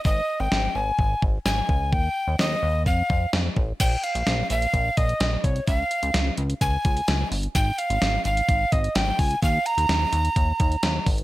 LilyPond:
<<
  \new Staff \with { instrumentName = "Recorder" } { \time 4/4 \key bes \dorian \tempo 4 = 128 ees''8. g''8. aes''4 r8 aes''4 | g''4 ees''4 f''4 r4 | g''8 f''4 f''4 ees''4 des''8 | f''4. r8 aes''4. r8 |
g''8 f''4 f''4 ees''8 g''8 aes''8 | f''8 bes''2. r8 | }
  \new Staff \with { instrumentName = "Analog synth bass" } { \clef bass \time 4/4 \key bes \dorian aes,,8 r16 aes,,16 aes,,8 aes,,8 aes,,8 aes,,8 aes,,8 des,8 | ees,8 r16 ees,16 ees,8 ees,8 f,8 f,8 f,8 a,,8 | bes,,8 r16 bes,,16 bes,,8 bes,,8 bes,,8 bes,,8 bes,,8 c,8 | des,8 r16 des,16 des,8 des,8 des,8 des,8 des,8 g,,8 |
aes,,8 r16 aes,,16 aes,,8 aes,,8 aes,,8 aes,,8 aes,,8 des,8 | ees,8 r16 ees,16 ees,8 ees,8 ees,8 ees,8 ees,8 aes,,8 | }
  \new DrumStaff \with { instrumentName = "Drums" } \drummode { \time 4/4 bd4 sn4 bd8 bd8 sn8 bd8 | bd4 sn4 bd8 bd8 sn8 bd8 | <cymc hh bd>8 hh16 hh16 <hh sn>8 hh16 hh16 <hh bd>8 <hh bd>16 hh16 <hh sn>8 <hh bd>16 hh16 | <hh bd>8 hh16 hh16 <hh sn>8 hh16 hh16 <hh bd>8 <hh bd>16 hh16 <hh sn>8 hho16 hh16 |
<hh bd>8 hh16 hh16 <hh sn>8 hh16 hh16 <hh bd>8 <hh bd>16 hh16 <hh sn>8 <hho bd>16 hh16 | <hh bd>8 hh16 hh16 <hh sn>8 hh16 hh16 <hh bd>8 <hh bd>16 hh16 <hh sn>8 <hho bd>16 hh16 | }
>>